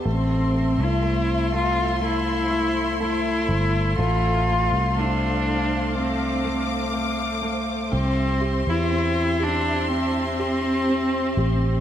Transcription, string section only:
0.05 7.89 A4 medium
0.05 11.80 C5 soft
0.05 3.95 E5 soft
0.05 5.91 C6 medium
3.98 7.88 F5 medium
5.94 7.90 D6 medium
7.91 11.80 G4 medium
7.91 11.80 E5 soft
7.91 11.80 C6 medium

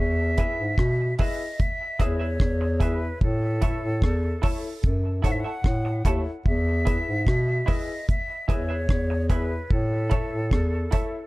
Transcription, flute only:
0.00 1.15 E5 loud
1.20 1.62 D#5 medium
1.61 2.03 E5 medium
2.01 2.83 C#5 medium
2.82 3.22 B4 medium
3.22 4.94 A4 medium
5.25 5.33 F#5 loud
5.32 5.41 E5 medium
5.40 6.06 F#5 medium
6.46 7.70 E5 medium
7.69 8.09 D#5 medium
8.09 8.47 E5 medium
8.50 9.27 C#5 loud
9.31 9.73 B4 medium
9.72 11.27 A4 medium

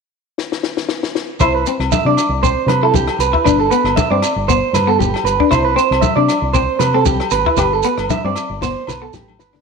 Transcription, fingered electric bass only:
1.40 1.64 C2 medium
1.79 1.90 C2 medium
2.05 2.16 C3 medium
2.29 2.54 C2 medium
2.66 2.91 C3 medium
2.94 3.07 C2 medium
3.19 3.32 C2 medium
3.46 3.70 G1 medium
3.84 3.95 G1 medium
4.10 4.21 G2 medium
4.36 4.60 G1 medium
4.73 4.98 G2 medium
5.00 5.13 G1 medium
5.24 5.38 G1 medium
5.52 5.76 C2 medium
5.91 6.02 C2 medium
6.16 6.28 C3 medium
6.42 6.66 C2 medium
6.79 7.04 C3 medium
7.06 7.19 C2 loud
7.31 7.45 G#1 medium
7.58 7.82 G1 medium
7.97 8.09 G1 medium
8.24 8.35 G2 medium
8.49 8.74 G1 medium
8.87 9.11 B1 medium
9.14 9.37 A1 medium
9.39 9.61 G1 medium

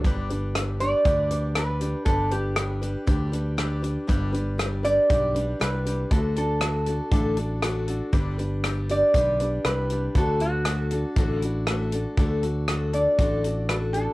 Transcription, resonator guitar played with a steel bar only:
0.80 1.52 D5 medium
1.56 2.05 B4 medium
2.05 2.32 A4 medium
2.32 3.79 G4 medium
4.84 5.63 D5 loud
5.61 6.12 B4 medium
6.12 6.19 A4 medium
6.38 7.85 A4 medium
8.91 9.68 D5 loud
9.65 10.17 B4 medium
10.18 10.42 A4 medium
10.41 11.39 F#4 medium
11.39 11.88 E4 medium
12.94 13.71 D5 medium
13.69 13.76 B4 medium
13.93 14.13 A4 medium

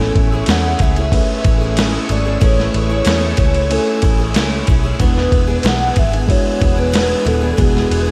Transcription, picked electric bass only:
0.16 0.42 A1 loud
0.48 0.74 E2 loud
0.80 1.19 C#2 medium
1.45 1.97 A1 loud
2.10 2.36 G#1 loud
2.42 2.68 A1 loud
2.75 3.00 A1 loud
3.07 3.32 E2 loud
3.38 3.77 C#2 medium
4.03 4.35 A1 loud
4.35 4.61 C#2 loud
4.68 4.94 B1 medium
5.00 5.26 E1 loud
5.32 5.58 E1 loud
5.64 5.90 B1 loud
5.97 6.35 G#1 loud
6.62 7.13 E1 loud
7.26 7.52 D#1 medium
7.59 7.84 E1 loud
7.91 8.11 E1 medium

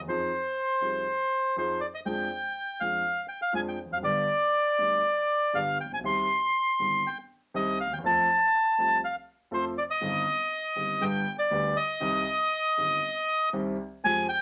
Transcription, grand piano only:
0.01 0.08 E2 medium
0.08 0.29 F2 medium
0.08 0.29 F3 medium
0.08 0.29 C4 soft
0.08 0.29 D#4 soft
0.08 0.29 G#4 medium
0.81 1.03 C2 soft
0.81 1.03 C3 soft
0.81 1.03 F3 soft
0.81 1.03 C4 soft
0.81 1.03 D#4 soft
0.81 1.03 G#4 soft
1.56 1.78 F2 medium
1.56 1.78 F3 medium
1.56 1.78 C4 soft
1.56 1.78 D#4 soft
1.56 1.78 G#4 medium
2.06 2.27 F2 medium
2.06 2.27 F3 medium
2.06 2.27 G#3 soft
2.06 2.27 D4 medium
2.06 2.27 G#4 medium
2.81 3.02 F2 soft
2.81 3.02 F3 soft
2.81 3.01 G#3 soft
2.81 3.02 D4 soft
2.81 3.02 G#4 soft
3.53 3.75 F2 medium
3.53 3.75 F3 medium
3.53 3.75 G#3 soft
3.53 3.75 D4 soft
3.53 3.75 G#4 medium
3.85 3.92 E2 soft
3.91 3.98 F2 medium
3.97 4.04 F#2 medium
4.02 4.24 G1 medium
4.02 4.24 G2 medium
4.02 4.24 D3 medium
4.02 4.24 G3 soft
4.02 4.24 B3 medium
4.02 4.24 G4 medium
4.78 5.00 D2 soft
4.78 5.00 D3 soft
4.78 4.99 G3 soft
4.78 5.00 B3 soft
4.78 5.00 G4 soft
5.53 5.75 G1 medium
5.53 5.75 G2 medium
5.53 5.75 D3 medium
5.53 5.75 G3 soft
5.53 5.75 B3 soft
5.53 5.75 G4 medium
5.85 5.92 A1 soft
5.92 5.98 A#1 soft
5.99 6.05 B1 soft
6.04 6.26 C2 medium
6.04 6.26 C3 medium
6.04 6.25 D#3 medium
6.04 6.25 G3 soft
6.04 6.26 C4 soft
6.04 6.26 G4 medium
6.79 7.01 G1 soft
6.79 7.01 G2 soft
6.79 7.01 D#3 soft
6.79 7.01 G3 soft
6.79 7.01 C4 soft
6.79 7.01 G4 soft
7.54 7.76 C2 medium
7.54 7.76 C3 medium
7.54 7.76 D#3 medium
7.54 7.76 G3 medium
7.54 7.76 C4 medium
7.54 7.76 G4 medium
7.87 7.93 D2 soft
7.92 7.99 D#2 soft
7.98 8.05 E2 medium
8.04 8.25 F2 medium
8.04 8.25 F3 medium
8.04 8.25 A3 medium
8.04 8.25 C4 soft
8.04 8.25 A4 medium
8.78 9.00 C2 soft
8.78 9.00 C3 soft
8.78 9.00 F3 soft
8.78 8.99 A3 soft
8.78 9.00 C4 soft
8.78 9.00 A4 soft
9.51 9.73 F2 medium
9.51 9.73 F3 medium
9.51 9.73 A3 soft
9.51 9.73 C4 medium
9.51 9.73 A4 medium
10.01 10.23 G1 medium
10.01 10.23 G2 medium
10.01 10.23 D#3 medium
10.01 10.23 G3 medium
10.01 10.23 C4 medium
10.01 10.23 G4 medium
10.76 10.98 G1 soft
10.76 10.97 G2 soft
10.76 10.97 D#3 soft
10.76 10.98 G3 soft
10.76 10.97 C4 soft
10.76 10.97 G4 soft
11.01 11.22 G1 medium
11.01 11.22 G2 medium
11.01 11.22 D3 medium
11.01 11.22 G3 medium
11.01 11.22 B3 medium
11.01 11.23 G4 medium
11.51 11.72 D2 medium
11.51 11.72 D3 medium
11.51 11.72 G3 medium
11.51 11.72 B3 medium
11.51 11.72 G4 medium
12.00 12.22 C2 medium
12.00 12.22 C3 medium
12.00 12.22 D#3 medium
12.00 12.22 G3 medium
12.00 12.22 C4 medium
12.00 12.22 G4 medium
12.78 12.98 G1 medium
12.78 12.98 G2 soft
12.78 12.98 D#3 soft
12.78 12.98 G3 soft
12.78 12.98 C4 soft
12.78 12.99 G4 soft
13.53 13.75 C2 medium
13.53 13.75 C3 medium
13.53 13.74 D#3 medium
13.53 13.75 G3 medium
13.53 13.75 C4 medium
13.53 13.75 G4 medium
14.04 14.25 F2 medium
14.04 14.25 F3 medium
14.04 14.25 G#3 medium
14.04 14.25 C4 medium
14.04 14.25 G4 medium

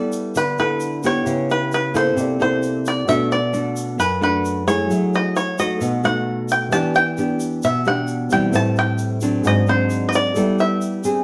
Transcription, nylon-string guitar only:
0.00 0.33 G3 medium
0.00 0.35 B3 medium
0.00 0.35 E4 medium
0.00 0.36 A4 medium
0.36 1.24 D3 medium
0.59 1.00 B3 medium
0.59 1.01 E4 medium
0.59 1.01 A4 medium
1.04 1.91 B3 medium
1.04 1.92 E4 medium
1.04 1.92 G4 medium
1.26 2.15 C#3 medium
1.94 2.36 A#3 medium
1.94 2.36 E4 medium
1.94 2.37 A4 medium
2.16 3.06 C3 medium
2.39 3.06 A#3 medium
2.39 3.07 E4 medium
2.39 3.07 A4 medium
3.08 3.97 B2 medium
3.08 3.38 A3 medium
3.08 3.38 D4 medium
3.08 3.38 F#4 medium
3.53 3.99 A3 medium
3.53 3.99 D4 medium
3.53 3.99 F#4 medium
3.98 4.87 F#2 medium
4.21 4.63 A3 medium
4.21 4.64 D4 medium
4.21 4.64 F#4 medium
4.67 5.55 A3 medium
4.67 5.55 E4 medium
4.67 5.55 G#4 medium
4.90 5.79 F#3 medium
5.59 6.01 A3 medium
5.59 6.01 D#4 medium
5.59 6.01 F#4 medium
5.81 6.70 B2 medium
6.04 6.70 A3 medium
6.04 6.71 D#4 medium
6.04 6.71 F#4 medium
6.72 7.61 E3 medium
6.72 7.01 B3 medium
6.72 7.01 D4 medium
6.72 7.02 G4 medium
7.18 7.63 B3 medium
7.18 7.63 D4 medium
7.18 7.63 G4 medium
7.64 8.52 B2 medium
7.86 8.28 B3 medium
7.86 8.28 D4 medium
7.86 8.28 G4 medium
8.32 9.19 G3 medium
8.32 9.19 C4 medium
8.32 9.19 E4 medium
8.53 9.42 A2 medium
9.22 9.64 F#3 medium
9.22 9.64 C4 medium
9.22 9.64 D4 medium
9.45 10.33 G#2 medium
9.68 10.34 F#3 medium
9.68 10.34 C4 medium
9.68 10.34 D4 medium
10.36 11.24 G3 medium
10.36 11.00 B3 medium
10.36 11.01 E4 medium
10.36 11.01 A4 medium
11.04 11.24 C4 medium
11.04 11.24 D4 medium
11.04 11.24 G#4 medium

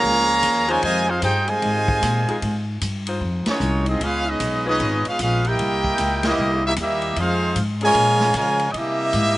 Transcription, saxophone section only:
0.00 0.24 G#3 loud
0.00 0.24 C#4 medium
0.00 0.24 F4 medium
0.00 0.24 G#4 loud
0.68 1.20 G#3 loud
0.68 1.20 D#4 loud
0.68 1.20 F4 loud
0.68 1.20 C5 loud
1.23 1.84 D#4 medium
1.23 1.83 F4 medium
1.23 1.83 G#4 medium
1.23 1.84 C5 loud
2.28 2.38 G#3 loud
2.28 2.38 D#4 medium
2.28 2.38 F4 medium
2.28 2.38 G#4 loud
3.07 3.58 G#3 medium
3.07 3.59 D#4 medium
3.07 3.59 F4 medium
3.07 3.59 C5 loud
4.66 5.17 G#3 loud
4.66 5.17 C#4 medium
4.66 5.17 F4 medium
4.66 5.17 B4 loud
6.24 6.75 E3 loud
6.24 6.76 C4 medium
6.24 6.75 A#4 loud
6.24 6.75 D#5 medium
7.81 8.33 F3 loud
7.81 8.33 A#3 medium
7.81 8.33 C#4 loud
7.81 8.32 G#4 loud

